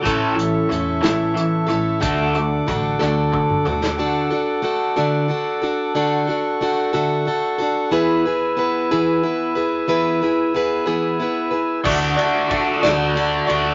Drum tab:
CC |------------|------------|------------|------------|
RD |------------|------------|------------|------------|
HH |x-x-x-x-x-x-|x-x-x-------|------------|------------|
SD |------o-----|------o----o|------------|------------|
T2 |------------|---------o--|------------|------------|
FT |------------|----------o-|------------|------------|
BD |o-----------|o---o---o---|------------|------------|

CC |------------|------------|x-----------|
RD |------------|------------|--x-x-x-x-x-|
HH |------------|------------|------------|
SD |------------|------------|------o-----|
T2 |------------|------------|------------|
FT |------------|------------|------------|
BD |------------|------------|o---o-------|